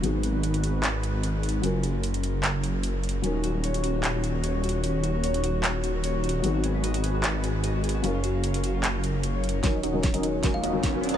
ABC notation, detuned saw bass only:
X:1
M:4/4
L:1/16
Q:"Swing 16ths" 1/4=150
K:Ebm
V:1 name="Detuned saw bass" clef=bass
A,,,16 | G,,,16 | E,,,16- | E,,,16 |
A,,,16 | G,,,16 | E,,,2 E,,,3 E,,,3 E,,,2 E,,,2 E,,,3 E,,, |]